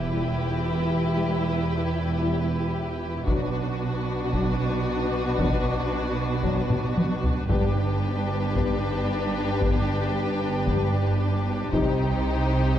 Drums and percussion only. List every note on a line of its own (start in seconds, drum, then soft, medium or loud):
3.28 taiko medium
4.33 taiko medium
5.39 taiko medium
6.44 taiko medium
6.70 taiko mid medium
6.97 taiko high medium
7.24 taiko low medium
7.50 taiko medium
8.56 taiko medium
9.62 taiko medium
10.67 taiko medium
11.73 taiko medium